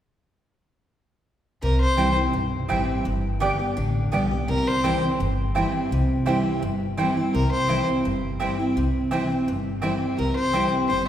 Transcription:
1.62 C2 C3 A#4
1.81 C5
1.97 C2 E3 G3 C4 E4 C5 G5
2.16 C4 E4
2.33 B1 G2
2.68 A1 E3 G3 C4 E4 C5 G5
3.05 G1 G2
3.40 D3 G3 B3 G4 D5 G5
3.59 B3 G4
3.77 A1 D3
4.12 B1 D3 G3 B3 G4 D5 G5
4.31 B3 G4
4.48 C2 C3 A#4
4.68 C5
4.83 E3 G3 C4 E4 C5 G5
5.03 C4 E4
5.20 G1 G2
5.55 E3 G3 C4 E4 C5 G5
5.91 C2 C3
6.26 E3 G3 C4 E4 C5 G5
6.62 G1 G2
6.97 E3 G3 C4 E4 C5 G5
7.17 C4 E4
7.34 C2 C3 A#4
7.52 C5
7.68 E3 G3 C4 E4 C5 G5
7.87 C4 E4
8.05 G1 G2
8.40 E3 G3 C4 E4 C5 G5
8.59 C4 E4
8.76 C2 C3
9.11 E3 G3 C4 E4 C5 G5
9.30 C4 E4
9.47 G1 G2
9.82 E3 G3 C4 E4 C5 G5
10.18 C2 C3 A#4
10.36 C5
10.53 E3 G3 C4 E4 C5 G5
10.89 G1 G2 C5

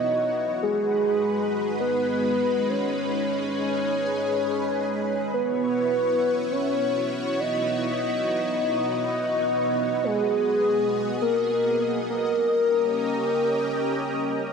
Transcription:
Already playing: B3 E4 F#4 C#5 D#5
0.63 G#3 D#4 G#4 B4
1.80 B4
2.69 C#5
2.99 G#4
5.34 B3 E4 F#4 B4 C#5
6.51 C#5
7.39 D#5
10.04 G#4 D#5
11.22 A#4
12.10 A#4
12.40 C#4 G4 A#4

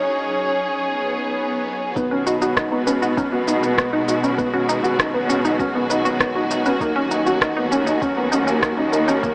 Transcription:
Already playing: F#3 C#4 D#4 G#4 C#5
0.75 swell
1.96 B2 D#3 F#3 G#3 B3 D#4 F#4, kick, shaker
2.11 C#4 B4
2.27 D#4 F#4, shaker
2.42 D#4 F#4, shaker
2.56 D#4 F#4, kick, cross-stick, shaker
2.72 B3 D#4
2.87 C#4 B4, shaker
3.02 D#4 F#4, shaker
3.17 C#4 D#4, kick, shaker
3.32 B3 F#4
3.48 D#4, shaker
3.63 B3 B4, shaker
3.78 B3 F#4, kick, cross-stick, shaker
3.93 D#4
4.08 D#4 F#4, shaker
4.23 C#4 D#4, shaker
4.38 B3 C#4 B4, kick, shaker
4.54 C#4 F#4
4.69 D#4, shaker
4.84 F#4, shaker
4.99 D#4, kick, cross-stick, shaker
5.14 B3 B4
5.29 C#4 F#4, shaker
5.45 D#4, shaker
5.59 C#4 F#4, kick, shaker
5.75 B3 D#4
5.90 D#4 B4, shaker
6.05 B3 F#4, shaker
6.20 B3 D#4, kick, cross-stick, shaker
6.35 D#4 F#4
6.51 D#4, shaker
6.66 C#4 B4, shaker
6.80 D#2 A#3 D#4, kick, shaker
6.96 C#4
7.11 D#4, shaker
7.26 C#4 F#4, shaker
7.41 D#4 A#4, kick, cross-stick, shaker
7.57 B3 D#4
7.72 C#4, shaker
7.87 D#4, shaker
8.02 C#4, kick, shaker
8.17 B3 A#4
8.32 C#4 D#4, shaker
8.47 A#3 C#4, shaker
8.62 A#3 D#4, kick, cross-stick, shaker
8.77 C#4 D#4
8.93 D#4 A#4, shaker
9.08 C#4 D#4, shaker
9.23 A#3 C#4, kick, shaker

